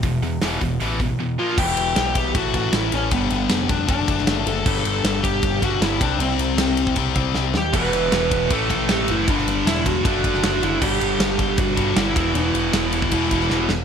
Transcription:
<<
  \new Staff \with { instrumentName = "Lead electric guitar" } { \time 4/4 \key e \minor \tempo 4 = 156 r2. r8 eis'8 | g'4. g'8 fis'8 fis'8 e'8 cis'8 | b8 b4 d'8 d'4. a'8~ | a'4. g'4 fis'8 e'8 d'8 |
c'2 r4. g'8 | b'4. b'8 a'4 g'8 e'8 | d'8 d'8 e'8 fis'8 fis'4. e'8 | g'4. g'8 fis'4 e'8 e'8 |
e'2.~ e'8 r8 | }
  \new Staff \with { instrumentName = "Distorted electric guitar" } { \clef bass \time 4/4 \key e \minor <e, b,>8 <e, b,>8 <e, b, e>8 <e, b,>8 <e, b, e>8 <e, b,>8 <e, b,>8 <ais, eis ais>8 | <e, b, e>2 <a, e a>2 | <g, d g>2 <d a d'>2 | <g, d g>2~ <g, d g>8 <g, d g>8 <g, d g>8 <c g c'>8~ |
<c g c'>2 <c g c'>8 <c g c'>4 r8 | <e, b, e>2 <a, e a>2 | <g, d g>2 <d a d'>2 | <g, d g>2~ <g, d g>8 <g, d g>8 <g, d g>8 <e, b, e>8~ |
<e, b, e>2 <e, b, e>8 <e, b, e>4 r8 | }
  \new Staff \with { instrumentName = "Distorted electric guitar" } { \clef bass \time 4/4 \key e \minor <e, b,>8 <e, b,>8 <e, b, e>8 <e, b,>8 <e, b, e>8 <e, b,>8 <e, b,>8 <ais, eis ais>8 | r1 | r1 | r1 |
r1 | <e, b, e>2 <a, e a>2 | <g, d g>2 <d a d'>2 | <g, d g>2.~ <g, d g>8 <e, b, e>8~ |
<e, b, e>2. <e, b, e>8 r8 | }
  \new Staff \with { instrumentName = "Picked electric bass" } { \clef bass \time 4/4 \key e \minor e,,8 e,8 e,,8 e,,8 a,,4 r4 | e,,8 e,,8 b,,4 a,,8 a,,8 a,,8 a,,8 | g,,8 g,,8 f,,4 fis,,8 fis,,8 fis,,8 fis,,8 | g,,8 g,,8 g,,4 g,,8 g,,8 g,,8 c,8 |
c,8 c,8 c,4 c,8 c,8 c,8 dis,8 | e,,8 e,,8 e,,4 a,,8 a,,8 a,,8 fis,,8 | g,,8 g,,8 e,,4 fis,,8 fis,,8 fis,,8 fis,,8 | g,,8 g,,8 g,,4 g,,8 g,,8 g,,8 e,,8 |
e,,8 e,,8 e,,4 e,,8 e,,8 e,,8 e,,8 | }
  \new DrumStaff \with { instrumentName = "Drums" } \drummode { \time 4/4 <hho bd>8 hho8 <hho sn>8 <hho bd>8 hho8 <hho bd>8 r4 | <cymc bd>8 cymr8 <cymr sn>8 <bd cymr>8 <bd cymr>8 <bd cymr>8 <cymr sn>8 cymr8 | <bd cymr>8 cymr8 <cymr sn>8 <bd cymr>8 <bd cymr>8 <bd cymr>16 sn16 <cymr sn>8 cymr8 | <cymc bd>16 sn16 cymr8 <cymr sn>8 <bd cymr>8 <bd cymr>8 <bd cymr>8 <cymr sn>8 <bd cymr>8 |
cymr8 cymr8 <cymr sn>8 cymr16 bd16 <bd cymr>8 <bd cymr>8 sn8 sn8 | <cymc bd cymr>16 sn16 cymr8 <cymr sn>8 <bd cymr>8 <bd cymr>8 <bd cymr>8 <cymr sn>8 cymr8 | <bd cymr>16 sn16 cymr8 <cymr sn>8 <bd cymr>8 <bd cymr>8 <bd cymr>16 sn16 <cymr sn>8 cymr8 | <cymc bd>8 cymr8 <cymr sn>8 <bd cymr>8 <bd cymr>8 <bd cymr>8 <cymr sn>8 <bd cymr>8 |
cymr8 cymr8 <cymr sn>8 cymr16 bd16 <bd cymr>8 <bd cymr>16 sn16 sn8 sn8 | }
>>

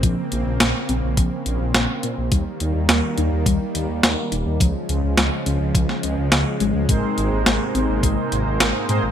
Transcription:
<<
  \new Staff \with { instrumentName = "Analog polysynth" } { \time 4/4 \key aes \major \tempo 4 = 105 r1 | r1 | r1 | <aes, c' ees' aes' bes' c''>2.~ <aes, c' ees' aes' bes' c''>8 <bes, c' ees' aes' bes' c''>16 r16 | }
  \new Staff \with { instrumentName = "Synth arpeggio sound" } { \time 4/4 \key aes \major f8 r8 bes8 c'8 f8 r8 bes8 c'8 | g8 r8 bes8 ees'8 g8 r8 bes8 ees'8 | f8 r8 aes8 des'8 f8 des'16 r16 f'16 r16 aes8 | aes8 r8 bes8 c'8 aes8 r8 bes8 c'8 | }
  \new Staff \with { instrumentName = "Supersaw synth" } { \clef bass \time 4/4 \key aes \major <des bes c'>1 | <ees g bes>1 | <des f aes>1 | <c bes>1 | }
  \new Staff \with { instrumentName = "Detuned saw bass" } { \clef bass \time 4/4 \key aes \major bes,,16 r16 bes,,16 bes,,16 bes,,16 r16 bes,,16 bes,,16 bes,,16 r16 bes,,16 bes,,16 bes,,16 r16 bes,16 bes,,16 | ees,16 r16 ees,16 ees,16 ees,16 r16 ees,16 ees,16 ees,16 r16 ees,16 ees,16 ees,16 r16 ees,,16 ees,16 | des,16 r16 des,16 des,16 des,16 r16 des,16 des,16 des,16 r16 des,16 des,16 des,16 r16 aes,,16 des,16 | aes,,16 r16 aes,,16 aes,,16 aes,,16 r16 aes,,16 aes,,16 aes,,16 r16 aes,,16 aes,,16 aes,,16 r16 aes,16 aes,,16 | }
  \new DrumStaff \with { instrumentName = "Drums" } \drummode { \time 4/4 <hh bd>8 hh8 <hh sn>8 hh8 <hh bd>8 hh8 <hh sn>8 hh8 | <hh bd>8 hh8 <hh sn>8 hh8 <hh bd>8 hh8 <hh sn>8 hh8 | <hh bd>8 hh8 <hh sn>8 hh8 <hh bd>16 sn16 hh8 <hh sn>8 hh8 | <hh bd>8 hh8 <hh sn>8 hh8 <hh bd>8 hh8 <hh sn>8 hh8 | }
>>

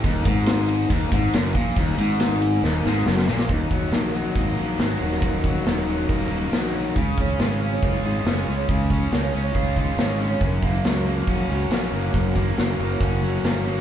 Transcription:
<<
  \new Staff \with { instrumentName = "Steel-string acoustic guitar" } { \time 4/4 \key ees \minor \tempo 4 = 139 r1 | r1 | <ees ges ees' ges' bes'>8 <ges ees' ges' bes'>8 <ees ges ees' ges' bes'>16 <ees' ges' bes'>16 <ges ees' ges' bes'>16 <ees' ges' bes'>8. <ges ees' ges' bes'>8 <ees ges ees' ges' bes'>8 <ges ees' ges' bes'>16 <ees' ges' bes'>16 | <ees ges ees' ges' bes'>8 <ges ees' ges' bes'>8 <ees ges ees' ges' bes'>16 <ees' ges' bes'>16 <ges ees' ges' bes'>16 <ees' ges' bes'>8. <ges ees' ges' bes'>8 <ees ges ees' ges' bes'>8 <ges ees' ges' bes'>16 <ees' ges' bes'>16 |
<des aes des' f' des''>8 <aes des' f' des''>8 <des aes des' f' des''>16 <des' f' des''>16 <aes des' f' des''>16 <des' f' des''>8. <aes des' f' des''>8 <des aes des' f' des''>8 <aes des' f' des''>16 <des' f' des''>16 | <des aes des' f' des''>8 <aes des' f' des''>8 <des aes des' f' des''>16 <des' f' des''>16 <aes des' f' des''>16 <des' f' des''>8. <aes des' f' des''>8 <des aes des' f' des''>8 <aes des' f' des''>16 <des' f' des''>16 | <ges des' ges' bes'>8 <ges des' ges'>8 <ges des' ges' bes'>16 <des' ges' bes'>16 <des' ges' bes'>16 <des' ges' bes'>8. <ges des' ges' bes'>8 <ges des' ges' bes'>8 <ges des' ges' bes'>16 <des' ges' bes'>16 | <ges des' ges' bes'>8 <ges des' ges' bes'>8 <ges des' ges' bes'>16 <des' ges' bes'>16 <ges des' ges' bes'>16 <des' ges' bes'>8. <ges des' ges' bes'>8 <ges des' ges' bes'>8 <ges des' ges' bes'>16 bes'16 | }
  \new Staff \with { instrumentName = "Distorted electric guitar" } { \clef bass \time 4/4 \key ees \minor ees,8 aes,4. ees,8 aes,8 ges,8 bes,8 | ees,8 aes,4. ees,8 aes,8 ges,8 bes,8 | ees,8 ges8 ees8 ges8 bes8 ees8 ges8 ees8 | ees,8 ges8 ees8 ges8 bes8 ees8 ges8 ees8 |
des8 des'8 aes8 des'8 f'8 aes8 des'8 aes8 | des8 des'8 aes8 des'8 f'8 aes8 des'8 aes8 | ges,8 bes8 ges8 bes8 des'8 ges8 bes8 ges8 | ges,8 bes8 ges8 bes8 des'8 ges8 bes8 ges8 | }
  \new Staff \with { instrumentName = "Distorted electric guitar" } { \clef bass \time 4/4 \key ees \minor ees,8 aes,4. ees,8 aes,8 ges,8 bes,8 | ees,8 aes,4. ees,8 aes,8 ges,8 bes,8 | ees,8 ges8 ees8 ges8 ees'8 bes8 ees8 ges8 | ees,8 ges8 ees8 ges8 ees'8 bes8 ees8 ges8 |
des8 des'8 aes8 des'8 aes'8 f'8 aes8 des'8 | des8 des'8 aes8 des'8 aes'8 f'8 aes8 des'8 | ges,8 bes8 ges8 bes8 ges'8 des'8 ges8 bes8 | ges,8 bes8 ges8 bes8 ges'8 des'8 ges8 bes8 | }
  \new Staff \with { instrumentName = "Fingered electric bass" } { \clef bass \time 4/4 \key ees \minor ees,,8 aes,,4. ees,,8 aes,,8 ges,,8 bes,,8 | ees,,8 aes,,4. ees,,8 aes,,8 ges,,8 bes,,8 | ees,,8 ees,,8 bes,,4 aes,,8 bes,,8 aes,,8 ees,,8 | ees,,4 ees,,8 ees,,8 ees,,4 bes,,4 |
des,8 des,8 aes,,4 ges,,8 aes,,8 ges,,8 des,8 | des,4 des,8 des,8 des,4 aes,,4 | ges,,8 ges,,8 des,4 bes,,8 des,8 bes,,8 ges,,8 | ges,,4 ges,,8 ges,,8 ges,,4 g,,4 | }
  \new DrumStaff \with { instrumentName = "Drums" } \drummode { \time 4/4 <bd cymr>8 <bd cymr>8 <cymr sn>8 cymr8 <bd cymr>8 <bd cymr>8 <cymr sn>16 sn16 <bd cymr>8 | <bd cymr>8 cymr8 <cymr sn>8 cymr8 sn8 sn8 sn16 sn16 sn16 sn16 | <hho bd>8 bd8 <hho sn>4 <hho bd>4 <hho sn>8. sn16 | <hho bd>8 bd8 <hho sn>4 <hho bd>4 <hho sn>4 |
<hho bd>8 bd8 <hho sn>4 <hho bd>4 <hho sn>4 | <hho bd>8 bd8 <hho sn>4 <hho bd>8 bd8 <hho sn>8 sn8 | <hho bd>8 bd8 <hho sn>4 <hho bd>4 <hho sn>4 | <hho bd>8 bd8 <hho sn>4 <hho bd>4 <hho sn>8. sn16 | }
>>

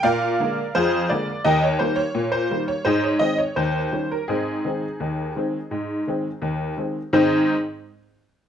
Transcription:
<<
  \new Staff \with { instrumentName = "Honky-tonk piano" } { \time 2/4 \key aes \major \tempo 4 = 85 <bes' d'' f''>4 <f' aes' c''>8 d''8 | <g' bes' ees''>16 des''16 c''16 des''8 c''8 des''16 | <ees' aes' c''>16 des''16 ees''16 des''16 c''8. bes'16 | <c' ees' aes'>2~ |
<c' ees' aes'>4 r4 | <aes, ees c' ees' aes' c''>8 r4. | }
  \new Staff \with { instrumentName = "Honky-tonk piano" } { \clef bass \time 2/4 \key aes \major bes,8 <d aes bes>8 f,8 <d aes bes>8 | ees,8 <ees g bes>8 bes,8 <ees g bes>8 | aes,8 <ees aes c'>8 ees,8 <ees g des'>8 | aes,8 <ees aes c'>8 ees,8 <ees aes c'>8 |
aes,8 <ees aes c'>8 ees,8 <ees aes c'>8 | r2 | }
>>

